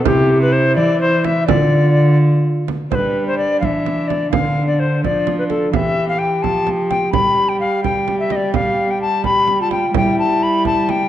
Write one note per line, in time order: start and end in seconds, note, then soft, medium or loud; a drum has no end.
0.05 0.77 C3 medium
0.05 1.47 E4 medium
0.05 0.40 G4 loud
0.05 frame drum medium
0.42 0.54 B4 medium
0.53 0.75 C5 medium
0.76 1.50 E3 medium
0.76 1.00 D5 loud
1.01 1.26 C5 loud
1.25 1.46 E5 medium
1.25 frame drum medium
1.47 2.72 D3 medium
1.47 2.65 F4 medium
1.47 2.18 D5 medium
1.47 frame drum medium
2.68 frame drum medium
2.91 3.63 G3 medium
2.91 4.29 D4 medium
2.91 2.96 C5 medium
2.91 frame drum medium
2.95 3.24 B4 medium
3.27 3.38 C5 medium
3.38 3.60 D5 medium
3.60 4.33 E3 medium
3.60 3.66 F5 medium
3.60 frame drum medium
3.65 4.09 E5 medium
3.86 frame drum soft
4.08 4.30 D5 medium
4.08 frame drum soft
4.31 5.04 D3 medium
4.31 5.02 D4 medium
4.31 4.66 F5 medium
4.31 frame drum medium
4.67 4.81 D5 medium
4.79 5.03 C5 medium
5.02 5.72 F3 medium
5.02 5.76 D4 medium
5.02 5.38 D5 medium
5.02 frame drum medium
5.27 frame drum soft
5.39 5.44 B4 medium
5.50 5.72 A4 medium
5.50 frame drum soft
5.72 6.44 E3 medium
5.72 7.12 G4 medium
5.72 6.07 E5 medium
5.72 5.77 F5 medium
5.72 frame drum medium
6.09 6.20 F5 medium
6.19 6.44 G5 medium
6.42 7.13 F3 medium
6.42 6.69 A5 medium
6.42 frame drum soft
6.67 frame drum soft
6.90 7.12 G5 medium
6.90 frame drum soft
7.12 9.91 G3 medium
7.12 7.82 G4 medium
7.12 7.50 B5 medium
7.12 frame drum medium
7.49 7.59 G5 medium
7.60 7.83 F5 medium
7.83 9.21 G4 medium
7.83 8.18 G5 medium
7.83 frame drum medium
8.08 frame drum soft
8.20 8.34 E5 medium
8.30 8.37 D#5 medium
8.30 frame drum soft
8.36 8.53 D5 medium
8.54 8.92 F5 medium
8.54 frame drum medium
8.91 9.01 G5 medium
9.02 9.24 A5 medium
9.24 9.62 G4 medium
9.24 9.59 B5 medium
9.24 frame drum medium
9.48 frame drum soft
9.61 9.97 F4 medium
9.61 9.71 A5 medium
9.71 9.94 G5 medium
9.71 frame drum soft
9.94 11.09 G3 medium
9.94 11.09 E4 medium
9.94 10.18 G5 medium
9.94 frame drum medium
10.19 10.44 A5 medium
10.43 10.66 B5 medium
10.65 10.91 A5 loud
10.65 frame drum medium
10.89 11.09 G5 loud
10.89 frame drum soft